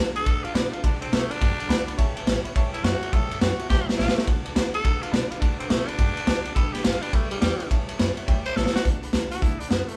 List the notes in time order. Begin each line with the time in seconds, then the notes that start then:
Already playing: A3 D4
0.00 F#4 A4
0.14 D4 F#4 A4 D5 F#5 A5, muted upright bass stroke, ride
0.25 F#2 D3 A3 D4 F#4 A4 D5 F#5 A5, kick, ride
0.43 A2 D4 F4 F#4 A4 D5 F#5 A5, ride
0.53 B2 A3 D4 F#4 A4 D5 F#5 B5, snare, ride
0.72 F4 F#4 A4 D5 F#5 A5, muted upright bass stroke, ride
0.76 D4
0.83 D3 A3 D4 F#4 A4 D5 F#5 A5, kick, ride
1.01 B2 C4 F#4 A4 D5 F#5 A5, ride
1.05 D4
1.12 B2 A3 D4 F#4 A4 D5 F#5 A5, snare, ride
1.30 D4 F#4 A4 D5 F#5 B5, muted upright bass stroke, ride
1.40 G2 D3 A3 D4 F#4 A4 D5 F#5 A5, kick, ride
1.57 D4 F#4 A4 D5 F#5 A5, muted upright bass stroke, ride
1.68 D2 A3 D4 D5 F#5 B5, snare, ride
1.72 F#4 A4
1.87 F#4 A4 D5 F#5 B5, muted upright bass stroke, ride
1.91 D4
1.98 A1 A2 E3 G3 C#4 G4 A4 C#5 E5 A5, kick, ride
2.15 A1 C#4 G4 A4 C#5 E5 A5, ride
2.19 G3
2.25 A1 G3 C#4 C#5 E5 A5, snare, ride
2.30 G4 A4
2.43 C#4 G4 A4 C#5 E5 B5, muted upright bass stroke, ride
2.48 G3
2.55 C#2 A2 E3 G3 C#4 G4 A4 C#5 E5 A5, kick, ride
2.73 E2 C#4 E4 G4 A4 C#5 E5 A5, ride
2.77 G3
2.83 F#2 G3 C#4 F#4 G4 C#5 E5 A5, snare, ride
2.88 A4
3.02 C#4 G4 A4 C#5 E5 A5, muted upright bass stroke, ride
3.06 G3
3.13 A2 E3 G3 C#4 G4 A4 C#5 E5 A5, kick, ride
3.31 G2 G3 C#4 G4 A4 C#5 E5 A5, ride
3.41 F#2 G3 C#4 F#4 G4 A4 C#5 E5 G5, snare, ride
3.59 G3 C#4 G4 A4 C#5 E5 A5, muted upright bass stroke, ride
3.69 D2 A2 E3 G3 G4 C#5 E5 A5, kick, snare
3.73 C#4 G4 A4
3.88 C#4 G4 A4 C#5 E5 A5, muted upright bass stroke, snare
3.92 G3
3.97 A1 G3 C#4 F4 C#5 E5 A5, snare
4.02 G4 A4
4.08 snare
4.16 A3 G4 A4 C#5 E5 A5, muted upright bass stroke, snare
4.20 G3 C#4
4.27 D2 D3 A3 D4 F#4 A4 D5 F#5 A5, kick, ride
4.45 D2 F#4 A4 D5 F#5 A5, ride
4.50 D4
4.55 D2 A3 D4 D5 F#5 B5, snare, ride
4.59 F#4 A4
4.73 F#4 A4 D5 A5, muted upright bass stroke, ride
4.79 D4
4.83 F#2 D3 A3 D4 D5 F#5 A5, kick, ride
4.88 F#4 A4
5.01 A2 F4 F#4 A4 D5 F#5 A5, ride
5.06 D4
5.11 B2 A3 D4 D5 F#5 B5, snare, ride
5.16 F#4 A4
5.29 F4 F#4 A4 D5 F#5 B5, muted upright bass stroke, ride
5.34 D4
5.40 D3 A3 D4 F#4 A4 D5 F#5 A5, kick, ride
5.58 B2 C4 F#4 A4 D5 F#5 B5, ride
5.62 D4
5.69 B2 A3 D4 F#4 D5 F#5 A5, snare, ride
5.74 A4
5.87 D4 F#4 A4 D5 F#5 B5, muted upright bass stroke, ride
5.91 D4
5.98 G2 D3 A3 D4 F#4 D5 F#5 A5, kick, ride
6.02 A4
6.16 A4 D5 F#5 A5, muted upright bass stroke, ride
6.20 D4
6.26 D2 A3 D4 F#4 A4 D5 F#5 A5, snare, ride
6.44 F#4 A4 D5 F#5 A5, muted upright bass stroke, ride
6.49 D4
6.55 G1 G3 D4 G4 A4 B4 D5 G5 B5, kick, ride
6.72 G1 G4 B4 D5 G5 B5, snare, ride
6.77 D4
6.83 G1 G3 D4 F4 G4 D5 G5 A5, snare, ride
6.88 B4
7.01 D4 G4 B4 D5 G5 B5, muted upright bass stroke, ride
7.05 D4
7.12 B1 G3 A3 D4 G4 B4 D5 G5 B5, kick, ride
7.30 D2 G3 G4 B4 D5 G5 B5, ride
7.34 D4
7.41 E2 G3 D4 D5 G5 C#6, snare, ride
7.45 G4 B4
7.59 G4 B4 D5 G5 C#6, muted upright bass stroke, ride
7.64 D4
7.70 A1 A2 E3 G3 C#4 E4 A4 C#5 E5 A5, kick, ride
7.87 G2 A4 C#5 E5 A5, ride
7.91 G3 C#4 E4
7.99 F#2 G3 C#4 C#5 E5 B5, snare, ride
8.03 E4 A4
8.17 C#4 E4 A4 C#5 E5 F#5, muted upright bass stroke, ride
8.21 G3
8.27 D2 A2 E3 G3 C#4 E4 C#5 E5 G5, kick, ride
8.31 A4
8.45 E4 A4 C5 C#5 E5 B5, muted upright bass stroke, ride
8.50 G3 C#4
8.56 A1 G3 C#4 E4 A4 C#5 E5 A5, snare
8.61 A4
8.66 snare
8.73 F#4 C#5 E5 A5, muted upright bass stroke, snare
8.83 D2 D3 A3 D4 F#4 A4 D5 F#5 A5, kick, closed hi-hat
9.03 F#4 A4 D5 F#5 B5, muted upright bass stroke, closed hi-hat
9.07 D4
9.13 D2 A3 D4 F#4 D5 F#5 A5, snare, closed hi-hat
9.17 A4
9.31 D4 F#4 A4 D5 F#5 A5, muted upright bass stroke, snare, closed hi-hat
9.41 D2 D3 A3 E4 D5 F#5 A5, kick, closed hi-hat
9.45 D4 F#4 A4
9.59 D4 F#4 A4 D5 F#5 B5, muted upright bass stroke, closed hi-hat
9.64 D4
9.69 F#2 A3 B3 D4 D5 F#5 B5, snare, closed hi-hat
9.74 F#4 A4
9.88 A3 F#4 A4 D5 F#5 A5, muted upright bass stroke, closed hi-hat
9.92 D4